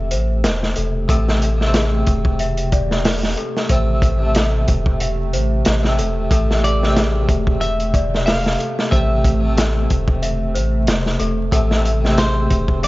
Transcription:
Already playing: E1 C3 A3 A4 C5 E5
0.11 A1 C5, closed hi-hat
0.44 E1, snare, closed hi-hat
0.63 snare
0.76 E1 A4, closed hi-hat
1.08 A1 C3 A3 A4, kick, closed hi-hat
1.28 snare
1.42 closed hi-hat
1.57 C3
1.61 A3, snare
1.65 C4
1.74 G#4, snare, closed hi-hat
2.07 E1, kick, closed hi-hat
2.25 kick
2.39 E5, closed hi-hat
2.57 closed hi-hat
2.72 D5, kick, closed hi-hat
2.91 snare
3.05 A4, snare, open hi-hat
3.23 snare
3.37 A4, closed hi-hat
3.57 snare
3.69 A1 C3 A3 C5, kick, closed hi-hat
3.73 C4
4.02 kick, closed hi-hat
4.18 C3
4.22 A3
4.35 A4, snare, closed hi-hat
4.68 E1, kick, closed hi-hat
4.86 kick
5.00 E5, closed hi-hat
5.33 A1 C5, closed hi-hat
5.65 A1, snare, closed hi-hat
5.83 C3 A3, snare
5.99 E1 A4, closed hi-hat
6.30 A1 C3 A3 A4, kick, closed hi-hat
6.51 snare
6.64 D5, closed hi-hat
6.79 C3
6.83 A3, snare
6.87 C4
6.96 G#4, snare, closed hi-hat
7.29 E1, kick, closed hi-hat
7.47 kick
7.61 E5, closed hi-hat
7.80 closed hi-hat
7.94 D5, kick, closed hi-hat
8.14 snare
8.26 A4 F5, snare, open hi-hat
8.46 snare
8.59 A4, closed hi-hat
8.79 snare
8.91 A1 C3 A3 C5 E5, kick, closed hi-hat
8.95 C4
9.25 kick, closed hi-hat
9.40 C3
9.44 A3
9.57 A4, snare, closed hi-hat
9.90 E1, kick, closed hi-hat
10.08 kick
10.22 E5, closed hi-hat
10.54 A1 C5, closed hi-hat
10.87 E1, snare, closed hi-hat
11.06 snare
11.20 E1 A4, closed hi-hat
11.52 A1 C3 A3 D4 A4, kick, closed hi-hat
11.71 snare
11.85 closed hi-hat
12.01 C3 A3
12.05 C4, snare
12.18 G#4 C5, snare, closed hi-hat
12.50 E1, kick, closed hi-hat
12.68 kick
12.83 D5 E5, closed hi-hat

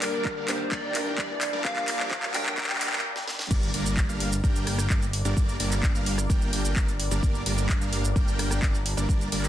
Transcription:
Already playing: G2 G3 A#3 D4 G4 A#4 D5, riser
0.02 G3 A#3 D4 A#4 D5, clap, open hi-hat
0.25 kick, clap
0.37 G3 A#3 D4 A#4 F5
0.48 G2 A#3 D4 G4 A#4 C5, clap, open hi-hat
0.72 G3 A#3 D4 A#4 D5 G5, kick, clap
0.94 G2 A#3 D4 G4 A#4, clap, open hi-hat
1.18 G3 A#3 D4 A#4 D5, kick, clap
1.41 clap, open hi-hat
1.53 G3 A#3 D4 A#4 D5
1.63 G2 G3 A#3 D4 G4 A#4 D5 F5, kick, clap
1.76 clap
1.88 G3 A#3 D4 A#4 D5, clap, open hi-hat
2.00 clap
2.11 kick, clap
2.23 G3 A#3 D4 A#4 F5, clap
2.34 G2 A#3 D4 G4 A#4 G5, clap, open hi-hat
2.46 clap
2.58 G3 A#3 D4 A#4 G5, kick, clap
2.63 clap
2.69 clap
2.75 clap
2.81 clap, open hi-hat
2.87 clap
2.93 clap
2.98 clap
3.16 snare
3.28 snare
3.39 snare
3.51 G1 G3 A#3 D4 A#4 D5, kick, crash, impact, shaker
3.63 shaker
3.74 G1 G3 A#3 D4 A#4 D5, open hi-hat
3.86 shaker
3.97 kick, clap, shaker
4.09 G1 G3 A#3 D4 A#4 F5, shaker
4.20 open hi-hat
4.33 shaker
4.44 G1 G3 A#3 D4 A#4 G5, kick, shaker
4.56 shaker
4.67 cross-stick, open hi-hat
4.79 cross-stick, shaker
4.90 G1 G3 A#3 D4 A#4 D5, kick, clap, shaker
5.02 shaker
5.13 open hi-hat
5.25 G1 G3 A#3 D4 A#4 D5, shaker
5.37 G1, kick, shaker
5.49 shaker
5.60 G1 G3 A#3 D4 A#4 D5, open hi-hat
5.72 clap, shaker
5.83 kick, clap, shaker
5.95 G1 G3 A#3 D4 A#4 F5, shaker
6.06 open hi-hat
6.18 cross-stick, shaker
6.30 G1 G3 A#3 D4 A#4 G5, kick, shaker
6.42 shaker
6.53 open hi-hat
6.65 shaker
6.76 G1 G3 A#3 D4 D5, kick, cross-stick, clap, shaker
6.88 shaker
7.00 open hi-hat
7.11 G1 G3 A#3 D4 A#4 D5, shaker
7.23 G1 G3 A#3 D4 A#4 D5, kick, shaker
7.35 shaker
7.46 G1 G3 A#3 D4 A#4 D5, open hi-hat
7.58 shaker
7.69 kick, clap, shaker
7.81 G1 G3 A#3 D4 A#4 F5, shaker
7.93 open hi-hat
8.05 shaker
8.16 G1 G3 A#3 D4 A#4 G5, kick, shaker
8.28 shaker
8.39 cross-stick, open hi-hat
8.51 cross-stick, shaker
8.62 G1 A#3 D4 A#4, kick, clap, shaker
8.75 shaker
8.86 open hi-hat
8.97 G1 G3 A#3 D4 A#4 D5, shaker
9.09 G1 G3 A#3 D4 A#4 D5, kick, shaker
9.21 shaker
9.32 G1 G3 A#3 D4 A#4 D5, open hi-hat
9.44 clap, shaker

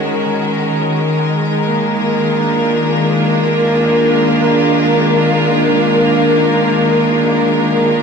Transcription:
Already playing: D#3 G#3 C#4 F#4 A#4
1.65 A#3
2.03 F4
2.35 D4

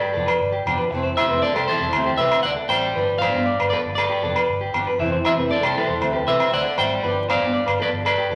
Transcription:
Already playing: B4 D5
0.01 G4
0.14 F1 F3 B3 A4
0.18 D4
0.26 B4, low agogo
0.40 G1
0.52 G4
0.65 F1 F3 B3 D4, low agogo
0.78 B4
0.91 F1 E3 A3 C4, muted clean electric guitar stroke
1.03 C5
1.17 E3 A3 C4 C5 E5, low agogo
1.29 F1 C4 B4
1.34 A3
1.42 A4 D5
1.54 C2 G4 A4 C5, low agogo
1.68 E3 A3 A4 C5
1.72 C4
1.80 E1 A4
1.93 D2 F#3 A3 C4, low agogo
2.06 G4
2.17 C2 F#3 A3 B4 C5 E5
2.23 C4
2.31 low agogo
2.43 D2 D5 F#5
2.56 A4
2.69 A1 F#3 A3 C4 C5 D5 G5, low agogo
2.95 G1 F3 D4 B4, muted steel-string acoustic guitar stroke
3.18 F3 B3 C5 D5 F5, low agogo
3.23 D4
3.33 G2 B3 D4
3.46 D5
3.60 G1 B4, low agogo
3.70 F3 B3 D4 A4 B4 D5
3.85 G1
3.95 A4 B4 D5, low agogo
4.10 G4
4.22 F1 F3 B3 D4 A4
4.36 B4, low agogo
4.49 G1
4.61 G4
4.73 G1 F3 B3 D4, low agogo
4.87 B4
4.99 F1 E3 A3 C4 E5
5.12 C5
5.24 E3 A3 C4 C5 E5, low agogo
5.36 F1 A3 C4 B4
5.50 A4 D5
5.63 C2 G4 A4 C5, low agogo
5.74 E3 A3 C4 A4 C5
5.88 E1 A4
6.00 D2 F#3 A3 C4, low agogo
6.13 G4 B4
6.26 C2 F#3 A3 C4 B4 C5 E5
6.40 low agogo
6.52 D2 C5 D5 F#5
6.65 A4
6.76 G#1 F#3 A3 C4 C5 D5 G5, low agogo
7.03 G1 F3 B3 D4 B4
7.28 F3 B3 D4 C5 D5 F5, low agogo
7.40 G2 B3 D4
7.53 D5
7.66 G1 B4, low agogo
7.79 F3 B3 D4 A4 B4 D5
7.93 G1
8.05 A4 B4 D5, low agogo
8.18 G4
8.30 F1 F3 A4

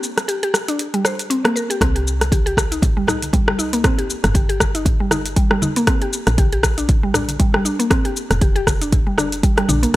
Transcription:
0.03 shaker
0.18 cross-stick, closed hi-hat, shaker
0.28 G4, closed hi-hat, shaker
0.43 G4, closed hi-hat
0.54 cross-stick, shaker
0.68 D4, closed hi-hat, shaker
0.79 closed hi-hat, shaker
0.94 G3, closed hi-hat
1.05 C5, cross-stick, shaker
1.19 closed hi-hat, shaker
1.30 C4, closed hi-hat, shaker
1.45 A#3, cross-stick, closed hi-hat
1.56 A#4, shaker
1.70 G4, closed hi-hat, shaker
1.81 C2 C4, kick, cross-stick, closed hi-hat, muted conga, shaker
1.96 G4, closed hi-hat
2.07 shaker
2.21 cross-stick, closed hi-hat, muted conga, shaker
2.32 G4, kick, closed hi-hat, high conga, shaker
2.46 G4, closed hi-hat
2.57 kick, cross-stick, muted conga, high conga, shaker
2.72 D#4, closed hi-hat, shaker
2.82 kick, closed hi-hat, high conga, low conga, shaker
2.97 G3, muted conga
3.07 D#4, cross-stick, low conga, shaker
3.22 closed hi-hat, high conga, shaker
3.33 G3, kick, closed hi-hat, low conga, shaker
3.48 G3, cross-stick, muted conga
3.59 D#4, shaker
3.73 A#3, closed hi-hat, shaker
3.84 C4, kick, cross-stick, closed hi-hat, muted conga, low conga, shaker
3.98 G4, closed hi-hat
4.10 shaker
4.24 G1, cross-stick, closed hi-hat, muted conga, low conga, shaker
4.34 G4, kick, closed hi-hat, high conga, shaker
4.49 G4, closed hi-hat
4.60 kick, cross-stick, muted conga, high conga, shaker
4.75 D#4, closed hi-hat, shaker
4.85 kick, closed hi-hat, low conga, shaker
5.00 G3, muted conga
5.11 D#4, cross-stick, high conga, shaker
5.26 closed hi-hat, shaker
5.36 G3, kick, closed hi-hat, shaker
5.51 G3, cross-stick, muted conga
5.62 D#4, high conga, shaker
5.76 A#3, closed hi-hat, shaker
5.87 C4, kick, cross-stick, closed hi-hat, muted conga, shaker
6.02 G4, closed hi-hat
6.13 shaker
6.27 A#1, cross-stick, closed hi-hat, muted conga, shaker
6.38 G4, kick, closed hi-hat, high conga, shaker
6.53 G4, closed hi-hat
6.63 kick, cross-stick, muted conga, high conga, shaker
6.78 D4, closed hi-hat, shaker
6.89 kick, closed hi-hat, high conga, low conga, shaker
7.03 G3, muted conga
7.14 D4, cross-stick, low conga, shaker
7.28 closed hi-hat, high conga, shaker
7.39 G3, kick, closed hi-hat, low conga, shaker
7.54 G3, cross-stick, muted conga
7.65 D4, shaker
7.79 A#3, closed hi-hat, shaker
7.90 C4, kick, cross-stick, closed hi-hat, muted conga, low conga, shaker
8.05 G4, closed hi-hat
8.17 shaker
8.30 F1, cross-stick, closed hi-hat, muted conga, low conga, shaker
8.41 G4, kick, closed hi-hat, high conga, shaker
8.56 G4, closed hi-hat
8.67 kick, cross-stick, muted conga, high conga, shaker
8.81 D4, closed hi-hat, shaker
8.92 kick, closed hi-hat, high conga, low conga, shaker
9.07 G3, muted conga
9.18 D4, cross-stick, high conga, shaker
9.32 closed hi-hat, shaker
9.43 G3, kick, closed hi-hat, shaker
9.57 G3, cross-stick, closed hi-hat, muted conga
9.69 A#1 D4, high conga, shaker
9.83 A#3, closed hi-hat, shaker

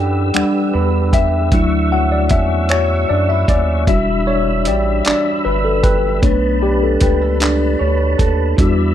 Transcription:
Already playing: F#2 E3 B3 D4 G4 A4 B4 F#5 E6
0.34 E2 G3 D4 F#5, finger snap, closed hi-hat
0.74 E2 B4
1.13 G4 E5, kick, closed hi-hat
1.52 D2 D3 F#3 A3 E4 E5 F#5 C#6, kick, closed hi-hat
1.92 F#3 F#5
2.12 D5
2.29 E2 C#4 E5, kick, closed hi-hat
2.69 F#3 C#5, finger snap, closed hi-hat
3.09 F#2 D4 D5
3.29 E4 E5
3.48 D#2 C#4 D5, kick, closed hi-hat
3.87 E1 E3 G3 D4 F#4 E5 B5 E6, kick, closed hi-hat
4.27 D4 C#5
4.65 A1 G4 D5, closed hi-hat
5.05 G1 D4 D5, clap, closed hi-hat
5.45 G1 B4
5.65 A4
5.83 G4 B4, kick, closed hi-hat
6.22 B1 A3 B3 D4 B4 C#5 A5 B5, kick, closed hi-hat
6.62 D4 G4
6.83 A4
7.01 C#2 G4 B4, kick, closed hi-hat
7.22 A4
7.40 D4, clap, closed hi-hat
7.79 D2 C#5
8.18 D#2 A4, kick, closed hi-hat
8.56 E2 E3 G3 D4 F#4 D5 E5 B5 E6, kick, closed hi-hat

